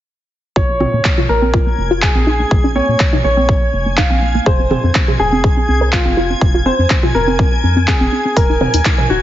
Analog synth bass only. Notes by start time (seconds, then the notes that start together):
0.56 A#1
0.93 A#2
1.29 A#1
1.78 F1
2.15 A#1
2.51 A#1
2.88 A#2
3.24 A#1
3.73 F1
4.10 A#1
4.46 F1
4.84 F2
5.19 F1
5.68 C2
6.05 F1
6.41 F1
6.79 F2
7.15 F1
7.63 F2
8.01 F1
8.37 D#1
8.74 D#2
9.10 D#1